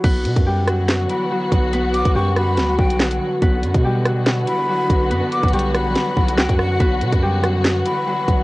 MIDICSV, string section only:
0, 0, Header, 1, 2, 480
1, 0, Start_track
1, 0, Key_signature, 2, "minor"
1, 0, Tempo, 422535
1, 47, Time_signature, 4, 2, 24, 8
1, 9581, End_track
2, 0, Start_track
2, 0, Title_t, "String section"
2, 0, Program_c, 0, 48
2, 46, Note_on_c, 0, 54, 74
2, 46, Note_on_c, 0, 59, 73
2, 46, Note_on_c, 0, 66, 95
2, 47, Note_on_c, 0, 50, 84
2, 3848, Note_off_c, 0, 54, 0
2, 3848, Note_off_c, 0, 59, 0
2, 3848, Note_off_c, 0, 66, 0
2, 3886, Note_on_c, 0, 54, 74
2, 3887, Note_on_c, 0, 59, 78
2, 3887, Note_on_c, 0, 66, 93
2, 7688, Note_off_c, 0, 59, 0
2, 7726, Note_on_c, 0, 59, 74
2, 9581, Note_off_c, 0, 50, 0
2, 9581, Note_off_c, 0, 54, 0
2, 9581, Note_off_c, 0, 59, 0
2, 9581, Note_off_c, 0, 66, 0
2, 9581, End_track
0, 0, End_of_file